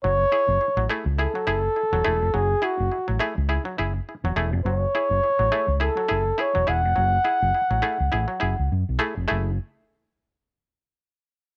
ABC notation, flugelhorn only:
X:1
M:4/4
L:1/8
Q:"Swing 16ths" 1/4=104
K:F#m
V:1 name="Flugelhorn"
c3 z A4 | G F2 z4 z | c4 A2 c f- | f6 z2 |
z8 |]